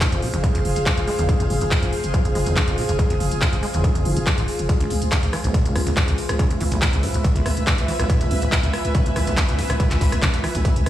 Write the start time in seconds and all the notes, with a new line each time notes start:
Already playing: F3 F4 G#4 C5 F5
0.01 F3, kick, clap, closed hi-hat
0.12 F1 F2, closed hi-hat
0.22 C3, open hi-hat
0.34 F1 F2, closed hi-hat
0.43 F2, kick, closed hi-hat
0.55 F1 F2, closed hi-hat
0.65 F1, open hi-hat
0.76 F1, closed hi-hat
0.86 F3, kick, clap, closed hi-hat
0.97 F1 F2, closed hi-hat
1.07 G#3, open hi-hat
1.19 F1 E2, closed hi-hat
1.29 F3, kick, closed hi-hat
1.40 F1 F2, closed hi-hat
1.50 F1 C3, open hi-hat
1.61 F1 F2, closed hi-hat
1.71 F2, kick, clap, closed hi-hat
1.82 F1 F2, closed hi-hat
1.93 open hi-hat
2.04 F1, closed hi-hat
2.14 F3, kick, closed hi-hat
2.25 F1 F2, closed hi-hat
2.35 F1 G#3, open hi-hat
2.46 F1 E2, closed hi-hat
2.56 F3, kick, clap, closed hi-hat
2.67 F1 F2, closed hi-hat
2.78 C3, open hi-hat
2.89 F1 F2, closed hi-hat
2.99 F2, kick, closed hi-hat
3.10 F1 F2, closed hi-hat
3.20 F1, open hi-hat
3.31 F1, closed hi-hat
3.41 F3, kick, clap, closed hi-hat
3.53 F1 F2, closed hi-hat
3.63 G#3, open hi-hat
3.74 F1 E2, closed hi-hat
3.84 F3, kick, closed hi-hat
3.95 F1 F2, closed hi-hat
4.05 F1 F3, open hi-hat
4.16 F1 G2, closed hi-hat
4.27 F3, kick, clap, closed hi-hat
4.38 F1 G#2, closed hi-hat
4.48 open hi-hat
4.59 F1, closed hi-hat
4.69 C#2, kick, closed hi-hat
4.80 C#2, closed hi-hat
4.90 C#2, closed hi-hat, open hi-hat
5.02 C#2, closed hi-hat
5.07 E5
5.12 C#3 B4, kick, snare, clap, closed hi-hat
5.23 C#2, closed hi-hat
5.33 E3, cross-stick, closed hi-hat, open hi-hat
5.44 B1 C#2, closed hi-hat
5.54 C#3, kick, closed hi-hat
5.65 C#2, closed hi-hat
5.75 C#2 G#2 G#5, cross-stick, closed hi-hat, open hi-hat
5.87 C#2, snare, closed hi-hat
5.97 C#2, kick, snare, clap, closed hi-hat
6.08 C#2, closed hi-hat
6.18 closed hi-hat, open hi-hat
6.29 C#2, cross-stick, closed hi-hat
6.39 C#3, kick, closed hi-hat
6.50 C#2, closed hi-hat
6.61 C#2 E3, closed hi-hat, open hi-hat
6.72 B1 C#2, closed hi-hat
6.82 C#3, kick, snare, clap, closed hi-hat
6.93 C#2, closed hi-hat
7.03 G#2, closed hi-hat, open hi-hat
7.14 C#2, closed hi-hat
7.24 C#2, kick, closed hi-hat
7.36 C#2, closed hi-hat
7.46 C#2, cross-stick, closed hi-hat, open hi-hat
7.57 C#2, closed hi-hat
7.67 C#3, kick, snare, clap, closed hi-hat
7.78 C#2, closed hi-hat
7.88 E3, closed hi-hat, open hi-hat
7.99 B1 C#2, cross-stick, closed hi-hat
8.09 C#3, kick, closed hi-hat
8.21 C#2, closed hi-hat
8.31 C#2 G#2, closed hi-hat, open hi-hat
8.42 C#2, closed hi-hat
8.52 C#2, kick, snare, clap, closed hi-hat
8.63 C#2, closed hi-hat
8.73 cross-stick, closed hi-hat, open hi-hat
8.85 C#2, closed hi-hat
8.95 C#3, kick, closed hi-hat
9.06 C#2, closed hi-hat
9.16 C#2 E3, cross-stick, closed hi-hat, open hi-hat
9.27 B1 C#2, snare, closed hi-hat
9.37 C#3, kick, snare, clap, closed hi-hat
9.48 C#2, closed hi-hat
9.58 G#2, snare, closed hi-hat, open hi-hat
9.70 C#2, cross-stick, closed hi-hat
9.80 C#2, kick, closed hi-hat
9.91 C#2, snare, clap, closed hi-hat
10.01 C#2, kick, snare, closed hi-hat, open hi-hat
10.12 C#2, cross-stick, closed hi-hat
10.22 C#3, kick, clap, closed hi-hat
10.34 C#2, snare, closed hi-hat
10.44 E3, cross-stick, closed hi-hat, open hi-hat
10.55 B1 C#2, closed hi-hat
10.65 C#3, kick, closed hi-hat
10.76 C#2, closed hi-hat
10.86 C#2, cross-stick, closed hi-hat, open hi-hat